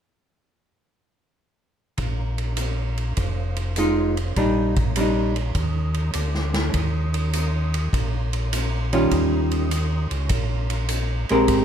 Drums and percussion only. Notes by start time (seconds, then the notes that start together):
1.98 kick, ride
2.38 ride
2.57 hi-hat pedal, ride
2.97 ride
3.17 kick, ride
3.56 ride
3.76 hi-hat pedal, ride
4.17 ride
4.36 kick, ride
4.76 kick, ride
4.96 hi-hat pedal, ride
5.36 ride
5.55 kick, ride
5.94 ride
6.13 hi-hat pedal, ride
6.35 snare
6.54 snare, ride
6.74 kick, ride
7.14 ride
7.33 hi-hat pedal, ride
7.74 ride
7.93 kick, ride
8.33 ride
8.53 hi-hat pedal, ride
8.93 ride
9.11 kick, ride
9.51 ride
9.71 hi-hat pedal, ride
10.11 ride
10.29 kick, ride
10.70 ride
10.88 hi-hat pedal, ride
11.29 ride
11.48 kick, ride